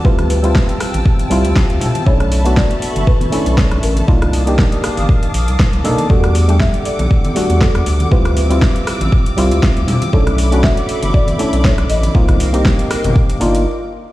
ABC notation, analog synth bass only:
X:1
M:4/4
L:1/16
Q:"Swing 16ths" 1/4=119
K:Bphr
V:1 name="Analog synth bass" clef=bass
D,,4- D,, z2 A,,, z2 C,, D,, C,, D,, z2 | B,,,4- B,,, z2 F,,, z3 B,,, z B,,, A,,, z | C,,4- C,, z2 G,,, z2 _B,,, C,, B,,, C,, z2 | E,,4- E,, z2 B,,, z3 E,, z E,, D,, z |
D,,4- D,, z2 A,,, z2 C,, D,, C,, D,, z2 | B,,,4- B,,, z2 F,,, z3 B,,, z B,,, A,,, z | C,,4- C,, z2 G,,, z2 G,,,2 z4 |]